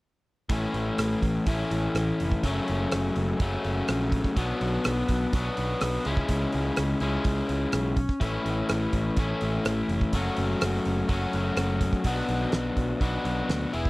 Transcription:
0.49 picked electric bass A1, overdriven electric guitar A2 E3 A3 C#4 E4, kick, open hi-hat
0.74 picked electric bass A1, open hi-hat
0.98 picked electric bass A1, cross-stick, open hi-hat
1.22 picked electric bass A1, kick, open hi-hat
1.46 picked electric bass A1, overdriven electric guitar A2 E3 A3 C#4 E4, kick, open hi-hat
1.71 picked electric bass A1, open hi-hat
1.95 picked electric bass A1, cross-stick, open hi-hat
2.20 picked electric bass F1, open hi-hat
2.32 kick
2.43 picked electric bass F#1, overdriven electric guitar F#2 C#3 F#3 A3 C#4, kick, open hi-hat
2.68 picked electric bass F#1, open hi-hat
2.92 picked electric bass F#1, cross-stick, open hi-hat
3.16 picked electric bass F#1, open hi-hat
3.40 picked electric bass F#1, overdriven electric guitar F#2 C#3 F#3 A3 C#4, kick, open hi-hat
3.64 picked electric bass F#1, open hi-hat
3.88 picked electric bass A#1, cross-stick, open hi-hat
4.12 kick, open hi-hat
4.24 kick
4.36 picked electric bass B1, overdriven electric guitar B2 F#3 B3, kick, open hi-hat
4.40 overdriven electric guitar D4
4.61 picked electric bass B1, open hi-hat
4.84 picked electric bass B1, cross-stick, open hi-hat
5.09 picked electric bass B1, kick, open hi-hat
5.33 picked electric bass B1, overdriven electric guitar B2 F#3 B3, kick, open hi-hat
5.37 overdriven electric guitar D4
5.57 picked electric bass B1, open hi-hat
5.81 picked electric bass B1, cross-stick, open hi-hat
6.05 picked electric bass C#2, overdriven electric guitar C#3 G#3 C#4, open hi-hat
6.09 overdriven electric guitar E4
6.17 kick
6.29 picked electric bass C#2, kick, open hi-hat
6.52 picked electric bass C#2, open hi-hat
6.76 picked electric bass C#2, cross-stick, open hi-hat
7.00 picked electric bass C#2, overdriven electric guitar C#3 G#3 C#4 E4, open hi-hat
7.24 picked electric bass C#2, kick, open hi-hat
7.49 picked electric bass C#2, open hi-hat
7.72 picked electric bass B1, cross-stick, open hi-hat
7.97 kick, open hi-hat
8.09 kick
8.20 picked electric bass A1, overdriven electric guitar A2 E3 A3 C#4 E4, kick, open hi-hat
8.46 picked electric bass A1, open hi-hat
8.69 picked electric bass A1, cross-stick, open hi-hat
8.93 picked electric bass A1, kick, open hi-hat
9.16 picked electric bass A1, overdriven electric guitar A2 E3 A3 C#4 E4, kick, open hi-hat
9.41 picked electric bass A1, open hi-hat
9.65 picked electric bass A1, cross-stick, open hi-hat
9.89 picked electric bass F1, open hi-hat
10.01 kick
10.13 picked electric bass F#1, overdriven electric guitar F#3 A3 C#4, kick, open hi-hat
10.17 overdriven electric guitar F#4
10.37 picked electric bass F#1, open hi-hat
10.61 picked electric bass F#1, cross-stick, open hi-hat
10.85 picked electric bass F#1, open hi-hat
11.09 picked electric bass F#1, overdriven electric guitar F#3 A3 C#4 F#4, kick, open hi-hat
11.33 picked electric bass F#1, open hi-hat
11.57 picked electric bass F#1, cross-stick, open hi-hat
11.81 kick, open hi-hat
11.93 kick
12.04 picked electric bass B1, overdriven electric guitar B2 F#3 B3 D4 F#4, kick, open hi-hat
12.29 picked electric bass B1, open hi-hat
12.52 picked electric bass B1, snare, open hi-hat
12.76 picked electric bass B1, kick, open hi-hat
13.01 picked electric bass B1, overdriven electric guitar B2 F#3 B3 D4 F#4, kick, open hi-hat
13.25 picked electric bass B1, open hi-hat
13.49 picked electric bass D2, snare, open hi-hat
13.73 picked electric bass E1, overdriven electric guitar E3 B3 E4 G#4, open hi-hat
13.85 kick

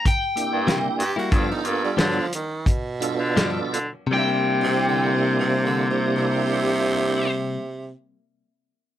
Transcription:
0.05 overdriven electric guitar G5, kick, closed hi-hat
0.35 baritone saxophone C3, tonewheel organ A#3 D4 E4 G4, closed hi-hat
0.52 baritone saxophone G2
0.67 clean electric guitar C3 G3 A#3 E4, snare, closed hi-hat
0.99 baritone saxophone G2, tenor saxophone G4, closed hi-hat
1.16 clean electric guitar G3 A#3 E4, tenor saxophone F#4
1.31 clean electric guitar G2 F3 B3 D4, baritone saxophone G2, tonewheel organ B3 D4 F4 A4, tenor saxophone F4, kick, closed hi-hat
1.52 tenor saxophone D#4
1.64 baritone saxophone G2, tenor saxophone A#3, closed hi-hat
1.85 tenor saxophone G3
1.97 clean electric guitar G2 F3 B3 D4, baritone saxophone D3, tenor saxophone F#3, snare, closed hi-hat
2.19 tenor saxophone F3
2.33 tenor saxophone D#3, closed hi-hat
2.66 tenor saxophone B2, kick, closed hi-hat
3.00 baritone saxophone G2, tonewheel organ B3 D4 F4 A4, closed hi-hat
3.19 baritone saxophone D3
3.36 clean electric guitar G2 F3 B3 D4, snare, closed hi-hat
3.73 baritone saxophone D3, closed hi-hat
4.07 clean electric guitar C3
4.11 baritone saxophone C3, clean electric guitar G3, tonewheel organ A#3 D4 E4 G4, overdriven electric guitar G5
4.15 clean electric guitar A#3 E4
4.63 tenor saxophone C3
4.88 tenor saxophone D3
5.14 tenor saxophone C3
5.39 tenor saxophone C3
5.66 tenor saxophone D3
5.90 tenor saxophone C3
6.16 tenor saxophone C3

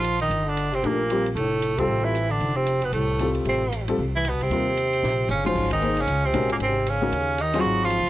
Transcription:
Already playing: upright bass A#1, bass clarinet F3, tenor saxophone F4
0.04 hi-hat pedal, ride
0.20 bass clarinet D#3, tenor saxophone D#4, ride
0.30 upright bass G1, ride
0.45 bass clarinet D3, tenor saxophone D4
0.57 hi-hat pedal, ride
0.72 bass clarinet C3, tenor saxophone C4, ride
0.83 upright bass A#1, bass clarinet A#2, upright piano A3 D4 G4 A#4, tenor saxophone A#3, ride
1.10 upright piano G3 C4 F4 G4, hi-hat pedal, ride
1.26 ride
1.35 upright bass F1, bass clarinet A2, tenor saxophone A3, ride
1.62 hi-hat pedal, ride
1.77 bass clarinet C3, upright piano G3 C4 F4 A4, tenor saxophone C4, kick, ride
1.88 upright bass A1
2.03 bass clarinet E3, tenor saxophone E4
2.15 hi-hat pedal, ride
2.30 bass clarinet D3, tenor saxophone D4
2.40 upright bass F1, ride
2.56 bass clarinet C3, tenor saxophone C4
2.67 hi-hat pedal, ride
2.82 bass clarinet B2, tenor saxophone B3, ride
2.92 upright bass C2, bass clarinet A2, tenor saxophone A3, ride
3.19 upright piano G3 C4 F4 A4, hi-hat pedal, ride
3.35 ride
3.45 upright bass A1, bass clarinet C3, tenor saxophone C4, ride
3.72 hi-hat pedal, ride
3.88 upright piano G3 C4 F4 A4, ride
3.98 upright bass C2
4.16 bass clarinet E3, tenor saxophone E4
4.25 bass clarinet B2, tenor saxophone B3, hi-hat pedal, ride
4.40 upright bass C2, bass clarinet C3, tenor saxophone C4, ride
4.50 upright bass D#2, upright piano G3 C4 F4 A#4, ride
4.77 hi-hat pedal, ride
4.93 ride
5.03 upright bass A#1, snare
5.28 upright bass G1, tenor saxophone C#4, floor tom, hi-hat pedal
5.33 bass clarinet C#3
5.45 bass clarinet F3, upright piano G#3 C#4 F#4 C5, tenor saxophone F4, mid tom
5.56 upright bass G#1, kick, crash
5.71 bass clarinet D#3, tenor saxophone D#4, kick, ride
5.81 upright piano A#3 D#4 G#4 C5, hi-hat pedal
5.97 bass clarinet C#3, tenor saxophone C#4, ride
6.07 upright bass C#2, ride
6.25 bass clarinet C3, tenor saxophone C4
6.33 upright bass A#1, upright piano G#3 C#4 F#4 A#4, hi-hat pedal, ride
6.50 bass clarinet A#2, tenor saxophone A#3, ride
6.60 upright bass G#1, bass clarinet C3, tenor saxophone C4, ride
6.87 bass clarinet C#3, tenor saxophone C#4, hi-hat pedal, ride
7.02 upright piano G#3 C#4 F#4 A#4
7.12 upright bass D#2, ride
7.38 tenor saxophone D#4, hi-hat pedal, ride
7.43 bass clarinet D#3
7.54 upright piano F#3 C4 F4 G#4, snare, ride
7.59 bass clarinet F#3, tenor saxophone F#4
7.64 upright bass G#1
7.84 bass clarinet F3, tenor saxophone F4
7.90 hi-hat pedal, ride
8.00 upright bass C#2
8.06 ride

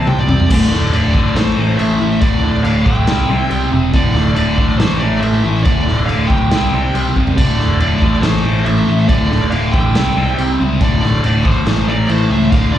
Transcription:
0.07 picked electric bass C2, overdriven electric guitar C3 G3 C4, lead electric guitar G5, mid tom
0.18 lead electric guitar D5, mid tom
0.28 picked electric bass C2, overdriven electric guitar C3 G3 C4, lead electric guitar D5, floor tom
0.40 floor tom
0.50 picked electric bass D1, overdriven electric guitar D2 A2 D3, lead electric guitar A4 D5, kick, crash
0.71 picked electric bass D1, overdriven electric guitar D2 A2 D3, snare
0.93 picked electric bass D1, overdriven electric guitar D2 A2 D3, lead electric guitar A4 D5, crash
1.14 picked electric bass G1, overdriven electric guitar D2 A2 D3, kick
1.35 picked electric bass A1, overdriven electric guitar A2 E3 A3, lead electric guitar A4 C5, snare, crash
1.57 picked electric bass A1, overdriven electric guitar A2 E3 A3
1.77 picked electric bass A1, overdriven electric guitar A2 E3 A3, lead electric guitar C5 E5, crash
2.00 picked electric bass A1, overdriven electric guitar A2 E3 A3
2.21 picked electric bass D1, overdriven electric guitar D2 A2 D3, lead electric guitar A4 D5, kick, crash
2.42 picked electric bass D1, overdriven electric guitar D2 A2 D3
2.63 picked electric bass D1, overdriven electric guitar D2 A2 D3, lead electric guitar D5 F5, crash
2.86 picked electric bass D1, overdriven electric guitar D2 A2 D3, lead electric guitar E5 G5, kick
3.07 picked electric bass C2, overdriven electric guitar C3 G3 C4, snare, crash
3.29 picked electric bass C2, overdriven electric guitar C3 G3 C4
3.50 picked electric bass C2, overdriven electric guitar C3 G3 C4, crash
3.71 picked electric bass E1, overdriven electric guitar C3 G3 C4
3.93 picked electric bass D1, overdriven electric guitar D2 A2 D3, lead electric guitar A4 D5, kick, crash
4.15 picked electric bass D1, overdriven electric guitar D2 A2 D3, snare
4.35 picked electric bass D1, overdriven electric guitar D2 A2 D3, lead electric guitar A4 D5, crash
4.57 picked electric bass G#1, overdriven electric guitar D2 A2 D3, kick
4.78 picked electric bass A1, overdriven electric guitar A2 E3 A3, lead electric guitar A4 C5, snare, crash
4.99 picked electric bass A1, overdriven electric guitar A2 E3 A3, lead electric guitar A#4 D5
5.19 picked electric bass A1, lead electric guitar C5 E5, crash
5.23 overdriven electric guitar A2 E3 A3
5.44 picked electric bass A1, overdriven electric guitar A2 E3 A3
5.63 picked electric bass D1, overdriven electric guitar D2 A2 D3, lead electric guitar A4 D5, kick, crash
5.87 picked electric bass D1, overdriven electric guitar D2 A2 D3, snare
6.06 picked electric bass D1, overdriven electric guitar D2 A2, lead electric guitar D5 F5, crash
6.10 overdriven electric guitar D3
6.27 picked electric bass D1, overdriven electric guitar D2, lead electric guitar E5 G5, kick
6.31 overdriven electric guitar A2 D3
6.51 picked electric bass C2, overdriven electric guitar C3 G3 C4, snare, crash
6.73 picked electric bass C2, overdriven electric guitar C3 G3 C4
6.94 picked electric bass C2, overdriven electric guitar C3 G3 C4, crash
7.16 picked electric bass C2, overdriven electric guitar C3 G3 C4, kick
7.27 floor tom
7.37 picked electric bass D1, overdriven electric guitar D2 A2 D3, lead electric guitar A4 D5, kick, crash
7.58 picked electric bass D1, overdriven electric guitar D2 A2 D3, snare
7.79 picked electric bass D1, overdriven electric guitar D2 A2 D3, lead electric guitar A4 D5, crash
8.01 picked electric bass A1, overdriven electric guitar D2 A2 D3, kick
8.21 picked electric bass A1, overdriven electric guitar A2 E3 A3, lead electric guitar A4 C5, snare, crash
8.44 picked electric bass A1, overdriven electric guitar A2 E3 A3
8.65 picked electric bass A1, overdriven electric guitar A2 E3 A3, lead electric guitar C5 E5, crash
8.87 picked electric bass A1, overdriven electric guitar A2 E3 A3
9.08 picked electric bass D1, overdriven electric guitar D2 A2 D3, lead electric guitar A4 D5, kick, crash
9.31 picked electric bass D1, overdriven electric guitar D2 A2 D3, snare
9.50 picked electric bass D1, overdriven electric guitar D2 A2 D3, lead electric guitar D5 F5, crash
9.72 picked electric bass A1, overdriven electric guitar D2 A2 D3, lead electric guitar E5 G5, kick
9.95 picked electric bass C2, overdriven electric guitar C3 G3 C4, snare, crash
10.16 picked electric bass C2, overdriven electric guitar C3 G3 C4
10.38 picked electric bass C2, overdriven electric guitar C3 G3 C4, crash
10.59 picked electric bass C#2, overdriven electric guitar C3 G3 C4
10.81 picked electric bass D1, overdriven electric guitar D2 A2 D3, lead electric guitar A4 D5, kick, crash
11.02 picked electric bass D1, overdriven electric guitar D2 A2 D3, snare
11.24 picked electric bass D1, overdriven electric guitar D2 A2 D3, lead electric guitar A4 D5, crash
11.45 picked electric bass G#1, overdriven electric guitar D2 A2 D3, lead electric guitar A4 C5, kick
11.66 picked electric bass A1, overdriven electric guitar A2 E3 A3, snare, crash
11.87 picked electric bass A1, overdriven electric guitar A2 E3 A3, lead electric guitar A#4 D5
12.08 picked electric bass A1, overdriven electric guitar A2 E3 A3, lead electric guitar A4 C5, crash
12.30 picked electric bass C#2, overdriven electric guitar A2 E3 A3, lead electric guitar C5 E5
12.51 picked electric bass D1, overdriven electric guitar D2 A2 D3, lead electric guitar D5 F5, kick, crash
12.73 picked electric bass D1, overdriven electric guitar D2 A2 D3, lead electric guitar A#4 D5

